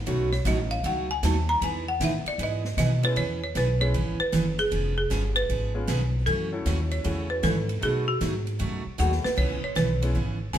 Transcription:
0.06 upright bass B1, steel-string acoustic guitar B2 F#3 A3 D#4 F#4, upright piano A3 B3 C#4 D#4 F#4, ride
0.32 marimba C#5, snare
0.45 upright bass A1, steel-string acoustic guitar B2 F#3 A3 D#4 F#4, marimba D#5, snare, hi-hat pedal, ride
0.71 marimba F5, ride
0.83 upright bass C#2, steel-string acoustic guitar B2 F#3 A3 D#4 F#4, marimba F#5, ride
1.11 marimba G#5
1.23 upright bass D#2, steel-string acoustic guitar B2 F#3 A3 D#4 F#4, marimba A5, snare, hi-hat pedal, ride
1.49 marimba A#5
1.61 upright bass E2, steel-string acoustic guitar E3 B3 D#4 G#4, marimba G#5, ride
1.88 marimba F#5
2.00 upright bass A2, steel-string acoustic guitar E3 B3 D#4 G#4, snare, hi-hat pedal, ride
2.04 marimba E5
2.25 marimba D5, muted upright bass stroke, ride
2.38 upright bass G#2, steel-string acoustic guitar E3 B3 D#4 G#4, ride
2.43 marimba D#5
2.65 snare
2.77 upright bass B2, steel-string acoustic guitar E3 B3 D#4 G#4, marimba D#5, snare, hi-hat pedal, ride
3.03 upright piano G#3 B3 C#4 E4 G#4, marimba B4, ride
3.16 upright bass E2, steel-string acoustic guitar E3 B3 C#4 G#4, marimba C#5, ride
3.44 marimba C#5
3.55 upright bass B1, steel-string acoustic guitar E3 B3 C#4 G#4, marimba B4, snare, hi-hat pedal, ride
3.80 upright piano G#3 B3 C#4 E4 G#4, marimba C#5, ride
3.94 upright bass G#1, steel-string acoustic guitar E3 B3 C#4 G#4, ride
4.20 marimba B4, muted upright bass stroke
4.32 upright bass F#1, steel-string acoustic guitar E3 B3 C#4 G#4, snare, hi-hat pedal, ride
4.59 marimba G#4, ride
4.71 upright bass F1, steel-string acoustic guitar F3 B3 C#4 G#4, ride
4.98 marimba G#4
5.10 upright bass G1, steel-string acoustic guitar F3 B3 C#4 G#4, snare, hi-hat pedal, ride
5.36 marimba B4, ride
5.49 upright bass G#1, steel-string acoustic guitar F3 B3 C#4 G#4, ride
5.74 upright piano G#3 B3 C#4 F4 G#4
5.87 upright bass B1, steel-string acoustic guitar F3 B3 C#4 G#4, snare, hi-hat pedal, ride
6.26 upright bass F#2, steel-string acoustic guitar C#3 E3 A3 C#4 F#4, marimba A4, ride
6.52 upright piano A3 C#4 E4 F#4 A4
6.66 upright bass D#2, steel-string acoustic guitar C#3 E3 A3 C#4 F#4, snare, hi-hat pedal, ride
6.91 marimba C#5, ride
7.04 upright bass E2, steel-string acoustic guitar C#3 E3 A3 C#4 F#4, upright piano A3 C#4 E4 F#4 G#4, ride
7.30 marimba B4
7.43 upright bass G#2, steel-string acoustic guitar C#3 E3 A3 C#4 F#4, marimba A4, snare, hi-hat pedal, ride
7.69 ride
7.81 steel-string acoustic guitar B2 F#3 A3 D#4 F#4, upright bass B2, upright piano A3 B3 D#4 F#4 A4, marimba G#4, ride
8.08 marimba F#4
8.21 upright bass G#2, steel-string acoustic guitar B2 F#3 A3 D#4 F#4, snare, hi-hat pedal, ride
8.47 ride
8.59 upright bass F#2, steel-string acoustic guitar B2 F#3 A3 D#4 F#4, ride
8.86 muted upright bass stroke
8.98 upright bass D#2, steel-string acoustic guitar B2 F#3 A3 D#4 F#4, upright piano A3 B3 D#4 F#4 G#4, marimba F#5, hi-hat pedal
9.12 snare
9.24 marimba B4, muted upright bass stroke, snare
9.36 upright bass C#2, steel-string acoustic guitar C#3 E3 B3 C#4 G#4, marimba C#5, kick, crash
9.63 marimba C#5, muted upright bass stroke
9.75 upright bass B1, steel-string acoustic guitar C#3 E3 B3 C#4 G#4, marimba B4, snare, hi-hat pedal, ride
10.02 upright piano G#3 B3 C#4 E4 G#4, ride
10.15 upright bass G#1, steel-string acoustic guitar C#3 E3 B3 C#4 G#4
10.53 upright bass E1, steel-string acoustic guitar C#3 E3 B3 C#4 G#4, marimba G#5, snare, hi-hat pedal, ride

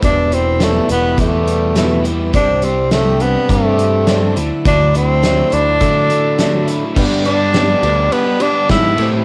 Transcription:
0.02 picked electric bass E1, twelve-string acoustic guitar E2 B2 E3 G3 B3 E4, tenor saxophone D4, kick, closed hi-hat
0.31 overdriven electric guitar B2, twelve-string acoustic guitar E3 G3 B3 E4, tenor saxophone C4, closed hi-hat
0.60 twelve-string acoustic guitar E2 B2 E3 G3 B3 E4, tenor saxophone A3, snare, closed hi-hat
0.89 picked electric bass E1, twelve-string acoustic guitar E3 G3 B3 E4, tenor saxophone B3, closed hi-hat
1.17 picked electric bass E2, twelve-string acoustic guitar E3 G3 B3 E4, tenor saxophone A3, overdriven electric guitar G4, kick, closed hi-hat
1.46 overdriven electric guitar G3, closed hi-hat
1.75 twelve-string acoustic guitar E2 B2 E3 G3 B3 E4, snare, closed hi-hat
2.04 twelve-string acoustic guitar E3 G3 B3 E4, closed hi-hat
2.33 picked electric bass C2, twelve-string acoustic guitar C3 G3 C4 D4 G4, tenor saxophone D4, kick, closed hi-hat
2.62 overdriven electric guitar G3, tenor saxophone C4, twelve-string acoustic guitar C4 D4 G4, closed hi-hat
2.91 twelve-string acoustic guitar C3 G3 C4 D4 G4, tenor saxophone A3, snare, closed hi-hat
3.20 tenor saxophone B3, twelve-string acoustic guitar C4 D4 G4, closed hi-hat
3.49 picked electric bass G2, twelve-string acoustic guitar G3 C4 D4 G4, tenor saxophone A3, kick, closed hi-hat
3.77 overdriven electric guitar C4, closed hi-hat
4.07 twelve-string acoustic guitar C3 G3 C4 D4 G4, snare, closed hi-hat
4.36 picked electric bass D2, overdriven electric guitar D3, twelve-string acoustic guitar A3 D4 E4, closed hi-hat
4.65 picked electric bass D2, twelve-string acoustic guitar D3 F#3 A3 D4 E4, tenor saxophone D4, kick, closed hi-hat
4.94 overdriven electric guitar F#3, twelve-string acoustic guitar A3 D4 E4, tenor saxophone C4, closed hi-hat
5.22 twelve-string acoustic guitar D3 F#3 A3 D4 E4, snare, closed hi-hat
5.50 picked electric bass D2, twelve-string acoustic guitar A3 D4 E4, tenor saxophone D4, closed hi-hat
5.80 picked electric bass D3, twelve-string acoustic guitar F#3 A3 D4 E4, kick, closed hi-hat
6.09 overdriven electric guitar A3, closed hi-hat
6.38 twelve-string acoustic guitar D3 F#3 A3 D4 E4, snare, closed hi-hat
6.67 overdriven electric guitar F#3, twelve-string acoustic guitar A3 D4 E4, closed hi-hat
6.96 twelve-string acoustic guitar G2 D3 G3 B3 D4 G4, picked electric bass G2, upright piano D4 G4 B4, kick, crash
7.25 twelve-string acoustic guitar G2 D3 G3 B3 D4 G4, tenor saxophone D4, ride
7.39 overdriven electric guitar G3 B3 D4 G4
7.53 twelve-string acoustic guitar G2 D3 G3 B3 D4 G4, snare, ride
7.83 picked electric bass D2, twelve-string acoustic guitar G3 B3 D4 G4, ride
7.96 overdriven electric guitar G3 B3 D4 G4
8.11 twelve-string acoustic guitar G3 B3 D4 G4, tenor saxophone B3, ride
8.25 overdriven electric guitar G3 B3 D4 G4
8.40 twelve-string acoustic guitar G3 B3 D4 G4, upright piano D4 G4 B4, tenor saxophone D4, ride
8.54 overdriven electric guitar G3 B3 D4 G4
8.68 overdriven electric guitar G2 D3 G3 B3 D4 G4, picked electric bass G#2, tenor saxophone E4, kick, snare, ride
8.83 overdriven electric guitar G3 B3 D4 G4
8.97 overdriven electric guitar A2 E3 A4, picked electric bass A2, upright piano C4 G4 A4, twelve-string acoustic guitar C4 E4 G4, ride
9.13 overdriven electric guitar C4 E4 A4

